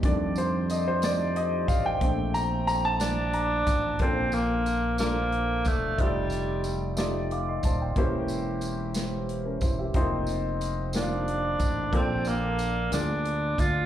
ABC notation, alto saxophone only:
X:1
M:6/8
L:1/8
Q:3/8=61
K:Bb
V:1 name="Alto saxophone"
z6 | z3 D3 | C B,2 B,2 A, | G,3 z3 |
z6 | z3 D3 | C B,2 D2 F |]